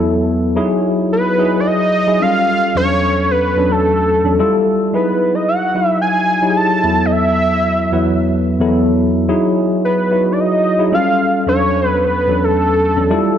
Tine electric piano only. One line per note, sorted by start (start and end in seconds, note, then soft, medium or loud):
0.00 0.58 E2 medium
0.00 0.55 F#3 medium
0.00 0.58 B3 medium
0.00 0.56 E4 medium
0.00 0.59 A4 medium
0.55 1.32 F#3 medium
0.55 1.32 D#4 medium
0.55 1.32 E4 medium
0.55 1.33 G#4 medium
1.38 2.02 F#3 medium
1.38 2.02 D#4 medium
1.38 2.02 E4 medium
1.38 2.02 G#4 medium
2.07 2.20 F#3 medium
2.07 2.20 D#4 medium
2.07 2.21 E4 medium
2.07 2.21 G#4 medium
2.20 2.71 G3 medium
2.20 2.71 C#4 medium
2.20 2.72 F4 medium
2.20 2.72 A4 medium
2.75 3.51 E2 medium
2.75 3.51 F#3 medium
2.75 3.51 C#4 medium
2.75 3.51 D4 medium
2.75 3.51 A4 medium
3.57 4.20 E2 medium
3.57 4.20 F#3 medium
3.57 4.20 C#4 medium
3.57 4.20 D4 medium
3.57 4.21 A4 medium
4.24 4.38 E2 medium
4.24 4.38 F#3 medium
4.24 4.39 C#4 medium
4.24 4.39 D4 medium
4.24 4.39 A4 medium
4.39 4.89 G3 medium
4.39 4.89 E4 medium
4.39 4.90 F4 medium
4.39 4.90 A4 loud
4.93 5.69 F#3 medium
4.93 5.69 D#4 medium
4.93 5.69 E4 medium
4.93 5.70 G#4 medium
5.74 6.38 F#3 medium
5.74 6.38 D#4 medium
5.74 6.38 E4 medium
5.74 6.39 F#4 medium
6.42 6.82 F#3 medium
6.42 6.84 D#4 medium
6.42 6.83 E4 medium
6.42 6.50 G4 medium
6.50 6.87 G#4 medium
6.83 7.85 E2 medium
6.83 7.85 F#3 medium
6.83 7.85 B3 medium
6.83 7.85 E4 medium
6.83 7.85 A4 medium
7.92 8.56 E2 medium
7.92 8.56 F#3 medium
7.92 8.56 B3 medium
7.92 8.56 E4 medium
7.92 8.56 B4 medium
8.60 9.24 E2 medium
8.60 9.24 F#3 medium
8.60 9.24 B3 medium
8.60 9.24 E4 medium
8.60 9.24 A4 medium
9.28 10.05 F#3 medium
9.28 10.05 D#4 medium
9.28 10.05 E4 medium
9.28 10.05 G#4 medium
10.11 10.74 F#3 medium
10.11 10.74 D#4 medium
10.11 10.74 E4 medium
10.11 10.75 F#4 medium
10.78 10.92 F#3 medium
10.78 10.93 D#4 medium
10.78 10.93 E4 medium
10.78 10.93 G#4 medium
10.92 11.43 G3 medium
10.92 11.43 C#4 medium
10.92 11.43 F4 medium
10.92 11.43 A4 medium
11.46 12.22 E2 medium
11.46 12.23 F#3 medium
11.46 12.23 C#4 medium
11.46 12.23 D4 medium
11.46 12.23 A4 medium
12.28 12.92 E2 medium
12.28 12.92 F#3 medium
12.28 12.92 C#4 medium
12.28 12.92 D4 medium
12.28 12.92 A4 medium
12.96 13.10 E2 medium
12.96 13.10 F#3 medium
12.96 13.10 C#4 medium
12.96 13.11 D4 medium
12.96 13.10 A4 medium
13.10 13.38 G3 medium
13.10 13.38 E4 medium
13.10 13.38 F4 medium
13.10 13.38 A4 loud